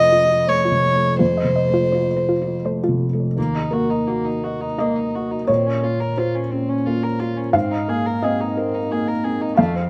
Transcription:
Already playing: F2 C3 A3 F4 D#5
0.02 C5
0.12 F4
0.47 A3 C5 C#5
0.65 F4
0.71 C3
0.96 A3
1.19 F2 F4 C5
1.37 D#5
1.44 C3
1.56 D#5
1.69 A3
1.74 F4
1.92 F4 C5
2.16 C5
2.29 F4
2.41 F4
2.64 A3 C5
2.84 F4
2.88 C3
3.13 A3
3.37 D#2 A#3
3.56 D#4
3.71 A#3 F#4 A#4
3.90 D#4
4.07 A#3 F#4
4.25 D#4
4.44 F#4 D#5
4.61 D#4
4.78 A#3 D#5
4.96 D#4
5.15 F#4
5.31 D#4
5.47 A#2 C4 C#5
5.67 C#4
5.83 A#3 F4
6.00 A#4
6.17 F4 C5
6.35 C#4
6.51 C4 C#4
6.69 C#4
6.86 A#3 F4
7.03 A#4
7.20 F4
7.37 C#4
7.53 G#2 C4 F5
7.71 D#4
7.88 A#3 G#4
8.06 A#4
8.23 C4 G#4 D#5
8.40 D#4
8.57 C4 A#4
8.75 D#4
8.91 A#3 G#4
9.08 A#4
9.24 C4 G#4
9.41 D#4
9.57 F2 A3 F5
9.75 C4

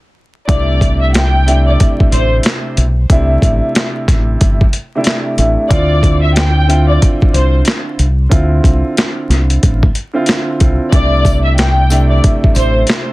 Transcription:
0.48 C2 C3 A3 D4 E4 D5, kick, closed hi-hat
0.81 kick, closed hi-hat
1.02 E5
1.14 G5, snare, clap, closed hi-hat
1.46 C3 A3 D4 E4, closed hi-hat
1.68 D5
1.80 kick, closed hi-hat
2.00 kick
2.12 A1 C5, closed hi-hat
2.43 snare, clap, closed hi-hat
2.77 B1, closed hi-hat
3.10 C2 C3 A3 D4 E4, kick, closed hi-hat
3.42 A1, kick, closed hi-hat
3.75 snare, clap, closed hi-hat
4.08 A1, kick, snare, closed hi-hat
4.41 G1, kick, closed hi-hat
4.61 kick
4.73 closed hi-hat
4.95 C3 A3 D4 E4
5.04 snare, clap, closed hi-hat
5.37 A1 C3 A3 D4 E4, closed hi-hat
5.69 D2 D3 C4 E4 F4 D5, kick, closed hi-hat
6.03 kick, closed hi-hat
6.23 E5
6.36 G5, snare, clap, closed hi-hat
6.67 D3 C4 E4 F4, closed hi-hat
6.89 D5
7.02 kick, closed hi-hat
7.22 kick
7.33 C2 C5, closed hi-hat
7.65 snare, clap, closed hi-hat
7.99 C2, closed hi-hat
8.29 D2 D3 C4 E4 F4, kick, closed hi-hat
8.64 C2, kick, closed hi-hat
8.97 snare, clap, closed hi-hat
9.29 C2, snare, closed hi-hat
9.50 closed hi-hat
9.63 A1, kick, closed hi-hat
9.83 kick
9.95 closed hi-hat
10.13 D3 C4 E4 F4
10.26 snare, clap, closed hi-hat
10.59 C2 D3 C4 E4 F4, kick, closed hi-hat
10.91 C2 C3 A3 D4 E4 D5, kick, closed hi-hat
11.25 kick, closed hi-hat, tambourine
11.45 E5
11.58 G5, snare, clap, closed hi-hat
11.90 C3 A3 D4 E4, closed hi-hat, tambourine
12.11 D5
12.24 kick, closed hi-hat
12.44 kick
12.55 A1 C5, closed hi-hat, tambourine
12.87 snare, clap, closed hi-hat

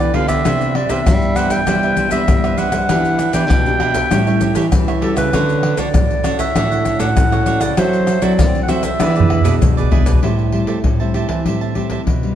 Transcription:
Already playing: D3 E3 D5
0.00 G4 B4 D5, pandeiro, tamborim, shaker
0.14 D3 B3 F4 G4 A4 B4 D5 F5, pandeiro
0.28 G4 B4 D5 E5, pandeiro, tamborim, shaker, surdo
0.45 C3 E3 B3 D4 G4 B4 C5 E5, pandeiro, tamborim, shaker, surdo
0.61 pandeiro, shaker
0.75 G4 B4 C5 D5 E5, pandeiro, tamborim
0.89 C3 E3 B3 D4 G4 B4 C5 E5, pandeiro, shaker, surdo
1.06 G2 G3, pandeiro, tamborim, shaker, surdo
1.22 pandeiro, shaker
1.36 E3 B3 D4 G4 B4 C5 E5 F#5, pandeiro, tamborim, shaker
1.50 B4 C5 E5 G5, pandeiro, shaker, surdo
1.67 C3 E3 G3 B3 D4 G4 B4 C5 E5, pandeiro, tamborim, shaker, surdo
1.83 B4 C5 E5, pandeiro, shaker
1.97 G4 B4 C5 E5, pandeiro, shaker, surdo
2.11 E3 G3 B3 D4 G4 B4 C5 E5, pandeiro, shaker, surdo
2.28 G2 G3, pandeiro, tamborim, shaker, surdo
2.44 B4 C5 E5, pandeiro, tamborim, shaker
2.57 E3 B3 D4 G4 B4 C5 E5 F#5, pandeiro, shaker
2.72 G3 B4 C5 E5, pandeiro, tamborim, shaker, surdo
2.89 E3 B3 D4 G4 B4 E5, pandeiro, tamborim, shaker, surdo
3.05 pandeiro, shaker
3.19 D4 G4 B4 E5, pandeiro, tamborim, shaker
3.33 E3 B3 D4 G4 B4 E5 G5, pandeiro, shaker, surdo
3.50 B2, pandeiro, tamborim, shaker, surdo
3.66 B3 D4 G4, pandeiro, shaker
3.80 D4 G4 B4 E5, pandeiro, tamborim
3.94 G4 B4 E5, pandeiro, shaker, surdo
4.11 A2 G3 C#4 F#4 G4 A4 C#5 E5, pandeiro, tamborim, shaker, surdo
4.27 G3 C#4 A4 C#5 E5, pandeiro, shaker
4.41 G4 A4 C#5 E5, pandeiro, shaker, surdo
4.55 E3 G4 A4 C#5 E5, pandeiro, shaker, surdo
4.72 E3 G3 C#4 F#4, pandeiro, tamborim, shaker, surdo
4.88 A4 C#5 E5, pandeiro, tamborim, shaker
5.02 G3 C#4 F#4 G4 A4 C#5 E5, pandeiro
5.16 C#3 A4 B4 C#5 E5, pandeiro, tamborim, shaker, surdo
5.33 D3 C#4 D4 F#4 A4 C#5 F#5, pandeiro, tamborim, shaker, surdo
5.49 pandeiro, shaker
5.63 D4 A4 C#5 F#5, pandeiro, tamborim
5.77 D3 D4 F#4 A4 C#5 D5 F#5, pandeiro, shaker, surdo
5.94 A2, pandeiro, tamborim, shaker, surdo
6.10 pandeiro, shaker
6.24 C#4 D4 F#4 A4 C#5 F#5, pandeiro, tamborim, shaker
6.38 A4 C#5 E5 F#5, pandeiro, shaker, surdo
6.55 A2 D3 C#4 D4 F#4 A4 C#5 F#5, pandeiro, tamborim, shaker, surdo
6.71 A4 C#5 F#5, pandeiro, shaker
6.85 D4 A4 C#5 F#5, pandeiro, shaker, surdo
6.99 A2 C#4 D4 F#4 A4 C#5 F#5, pandeiro, shaker, surdo
7.17 A2, pandeiro, tamborim, shaker, surdo
7.32 A4 C#5 F#5, pandeiro, tamborim, shaker
7.46 C#4 D4 F#4 A4 C#5 F#5, pandeiro, shaker
7.61 C#3 A4 C#5 D5 F#5, pandeiro, tamborim, shaker, surdo
7.77 F#3 C4 E4 F#4 A4 C5 E5, pandeiro, tamborim, shaker, surdo
7.93 pandeiro, shaker
8.07 F#4 A4 C5 E5, pandeiro, tamborim, shaker
8.22 F#3 C4 E4 F#4 A4 C5 D5 E5, pandeiro, shaker, surdo
8.39 F#3 C4, pandeiro, tamborim, shaker, surdo
8.55 pandeiro, shaker
8.63 F#5
8.68 C4 E4 F#4 A4 C5 E5, pandeiro, tamborim, shaker
8.83 A4 C5 E5, pandeiro, shaker, surdo
9.00 E3 B3 D4 E4 G#4 B4 D5, pandeiro, tamborim, shaker, surdo
9.10 tamborim
9.16 G#4 B4 D5, pandeiro, shaker
9.20 surdo
9.30 E4 G#4 B4 D5, pandeiro, tamborim, surdo
9.41 B2 B3 E4 G#4 B4, surdo, pandeiro, shaker
9.45 D4 G#4 D5, surdo
9.61 B2, pandeiro, shaker, surdo
9.77 G#4 B4 D5, pandeiro, shaker
9.82 surdo
9.91 B3 D4 E4 G#4 B4 D5, pandeiro, surdo
10.02 D5, pandeiro, shaker, surdo
10.06 B2 G#4 B4, surdo
10.13 surdo
10.23 A2 G3 C4 E4 G4 C5 E5 A5, pandeiro, surdo
10.39 pandeiro
10.52 G3 C4 E4 G4 C5 E5 A5, pandeiro
10.67 A3 G4 C5 E5 A5, pandeiro, surdo
10.84 A2 E3, pandeiro, surdo
11.00 G3 C4 E4 C5 E5 A5, pandeiro
11.14 G4 C5 E5 A5, pandeiro
11.29 E3 C5 E5 A5, pandeiro, surdo
11.45 A2 G3 C4 E4 G4 C5 E5 A5, pandeiro, surdo
11.61 C5 E5 A5, pandeiro
11.75 G3 C4 E4 G4 C5 E5 A5, pandeiro, surdo
11.90 G4 C5 E5 A5, pandeiro, surdo
12.07 B2 E3, pandeiro, surdo
12.23 G3 C4 E4, pandeiro

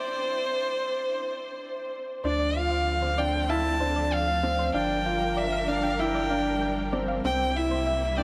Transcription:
Already playing: C5
2.23 D2 D3 F3 A3 C4 D4 C5 D5
2.39 D5
2.56 F4 F5
2.71 F5
3.02 C5
3.18 D4 D5 G5
3.49 E4 F5 A5
3.80 D4 C5
3.96 D5
4.13 F5
4.27 F5
4.43 C4
4.59 C5
4.73 G1 G3 D4 A#4 F5 G5
5.05 F4 G5
5.37 D5 E5
5.52 F5
5.68 D4 F5
5.83 G5
5.99 E4 G5
6.15 D5
6.30 D4 F5
6.61 G5
6.93 C4 D5
7.08 F5
7.24 C2 C3 A#3 C4 E4 G5
7.39 G5
7.56 E4 E5
7.71 C5
7.86 E5
8.18 D4 D5 G5

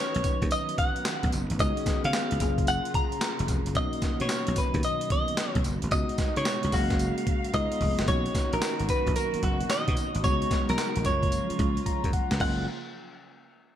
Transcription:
Already playing: D#3 F#3 B3 C#4 D#4 F#4 B4 C#5
0.15 B1, closed hi-hat
0.24 kick, closed hi-hat, tambourine
0.42 D#2, kick, closed hi-hat
0.51 D#5, closed hi-hat, tambourine
0.69 closed hi-hat
0.78 F#5, kick, closed hi-hat
0.96 closed hi-hat
1.05 snare, clap, closed hi-hat, tambourine
1.23 B1, kick, closed hi-hat
1.32 F#1, closed hi-hat, tambourine
1.50 G#1, closed hi-hat
1.59 C#2 G#3 B3 C#4 D#4 F#4 G#4 D#5, kick, closed hi-hat, tambourine
1.77 closed hi-hat
1.86 muted slap bass stroke, kick, snare, closed hi-hat, tambourine
2.04 C#3 F5, closed hi-hat
2.13 snare, clap, closed hi-hat, tambourine
2.31 C#2, closed hi-hat
2.40 F#1 C#3 F#3 A#3 C#4 F4 G#4, kick, closed hi-hat, tambourine
2.58 kick, closed hi-hat
2.67 F#5, closed hi-hat, tambourine
2.85 closed hi-hat
2.94 A#5, kick, closed hi-hat
3.12 closed hi-hat
3.21 snare, clap, closed hi-hat, tambourine
3.39 F1, closed hi-hat
3.48 F1, kick, closed hi-hat, tambourine
3.66 F#1, closed hi-hat
3.75 B1 B2 D#3 A#3 C#4 D#4 F#4 D#5, kick, closed hi-hat, tambourine
3.93 closed hi-hat
4.02 muted slap bass stroke, kick, snare, closed hi-hat, tambourine
4.20 B2 C#5, closed hi-hat
4.29 snare, clap, closed hi-hat, tambourine
4.47 B1, closed hi-hat
4.56 B4, kick, closed hi-hat, tambourine
4.74 D#2, kick, closed hi-hat
4.83 D#5, closed hi-hat, tambourine
5.01 closed hi-hat
5.10 D#5, kick, closed hi-hat
5.28 closed hi-hat
5.37 snare, clap, closed hi-hat, tambourine
5.55 B1, kick, closed hi-hat
5.64 F#1, closed hi-hat, tambourine
5.82 G#1, closed hi-hat
5.91 C#2 C#3 G#3 B3 D#4 F#4 D#5, kick, closed hi-hat, tambourine
6.09 closed hi-hat
6.18 muted slap bass stroke, kick, snare, closed hi-hat, tambourine
6.36 C#3 C#5, closed hi-hat
6.45 snare, clap, closed hi-hat, tambourine
6.63 C#2, closed hi-hat
6.72 F#1 F#3 G#3 A#3 C#4 F#4 F5, kick, open hi-hat, tambourine
6.90 kick, snare, closed hi-hat
6.99 closed hi-hat, tambourine
7.18 closed hi-hat
7.27 kick, closed hi-hat
7.45 closed hi-hat
7.53 C#2 C#3 G#3 B3 D#4 F4 D#5, kick, closed hi-hat
7.72 closed hi-hat
7.81 F1, kick, open hi-hat
7.99 F#1, snare, closed hi-hat
8.07 B1 B2 D#3 F#3 A#3 C#4 D#4 F#4 C#5, kick, closed hi-hat, tambourine
8.26 closed hi-hat
8.35 kick, snare, closed hi-hat, tambourine
8.53 A#1 A#4, closed hi-hat
8.62 snare, clap, closed hi-hat, tambourine
8.80 G#1, closed hi-hat
8.89 B4, kick, closed hi-hat, tambourine
9.07 A#1, kick, closed hi-hat
9.16 A#4, closed hi-hat, tambourine
9.34 muted slap bass stroke, closed hi-hat
9.43 F#1 F#4, kick, closed hi-hat
9.61 closed hi-hat
9.70 D#5, snare, clap, closed hi-hat, tambourine
9.88 B2, kick, closed hi-hat
9.97 closed hi-hat, tambourine
10.15 G#1, closed hi-hat
10.23 C#2 C#3 G#3 B3 D#4 F#4 C#5, kick, closed hi-hat, tambourine
10.42 closed hi-hat
10.51 kick, snare, closed hi-hat, tambourine
10.69 B1 A#4, closed hi-hat
10.78 snare, clap, closed hi-hat, tambourine
10.96 A#1, closed hi-hat
11.04 F#1 F3 G#3 A#3 C#4 F4 C#5, kick, closed hi-hat, tambourine
11.23 kick, closed hi-hat
11.32 closed hi-hat, tambourine
11.50 muted slap bass stroke, closed hi-hat
11.59 C#2, kick, closed hi-hat
11.77 closed hi-hat
11.86 A#5, kick, closed hi-hat
12.04 F#2, kick, closed hi-hat
12.13 F#5, kick, closed hi-hat
12.31 C#2, snare, closed hi-hat
12.40 F#1 C#3 F3 F#3 G#3 A#3 C#4 F4 F#5, kick, crash

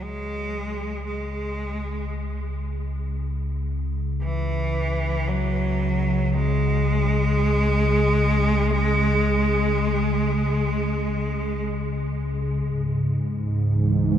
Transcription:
Already playing: C#2 C#3
0.02 G#3
1.07 G#3
4.22 E3
5.28 F#3
6.34 G#3
12.66 C#2 G#2 C#3
13.66 E3

